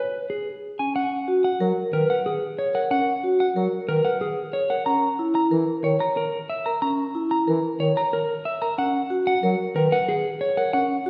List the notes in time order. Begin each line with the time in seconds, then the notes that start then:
Already playing: B4
0.30 G#4
0.79 C#4 G#5
0.95 C#4 F#5
1.28 F#4
1.44 F#5
1.60 F#3 A#4
1.93 D#3 A#4 B4
2.10 F#5
2.26 G#4
2.59 C#5
2.75 A#4 F#5
2.91 C#4 F#5
3.24 F#4
3.40 F#5
3.56 F#3 A#4
3.89 D#3 A#4 B4
4.05 F#5
4.21 G#4
4.53 C#5
4.70 A#4 F#5
4.86 C#4 A#5
5.19 E4
5.35 A#5
5.51 E3 A#4
5.84 D#3 C#5
6.00 A#5
6.17 A#4
6.50 E5
6.66 A#4 A#5
6.82 C#4 A#5
7.15 E4
7.31 A#5
7.48 E3 A#4
7.80 D#3 C#5
7.97 A#5
8.13 A#4
8.45 E5
8.62 A#4 A#5
8.78 C#4 F#5
9.10 F#4
9.27 F#5
9.43 F#3 A#4
9.76 D#3 A#4 B4
9.92 F#5
10.09 G#4
10.41 C#5
10.57 A#4 F#5
10.73 C#4 F#5
11.06 F#4